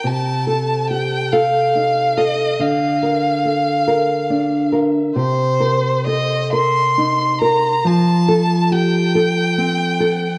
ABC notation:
X:1
M:12/8
L:1/8
Q:3/8=47
K:Cdor
V:1 name="Violin"
a2 g f2 e f4- f z | c2 e c'2 b a2 g4 |]
V:2 name="Nylon-string guitar"
C, A G A E A D, B A B D B | C, B A B E B F, A G A C A |]